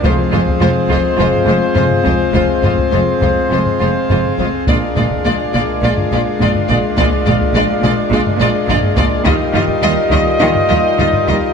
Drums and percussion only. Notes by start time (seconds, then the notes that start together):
0.04 taiko
0.33 taiko low
0.48 taiko
0.90 taiko
1.33 taiko low
1.76 taiko low
1.91 taiko low
2.05 taiko
2.34 taiko
2.63 taiko low
2.78 taiko
3.22 taiko
3.66 taiko low
4.10 taiko low
4.25 taiko low
4.39 taiko
4.67 taiko
4.96 taiko low
5.11 taiko
5.54 taiko
5.98 taiko low
6.40 taiko low
6.55 taiko low
6.70 taiko
6.98 taiko
7.27 taiko low
7.41 taiko
7.84 taiko
8.26 taiko low
8.69 taiko low
8.83 taiko low
8.98 taiko
9.26 taiko
9.54 taiko low
9.68 taiko
10.11 taiko
10.55 taiko low
10.99 taiko low
11.13 taiko low
11.28 taiko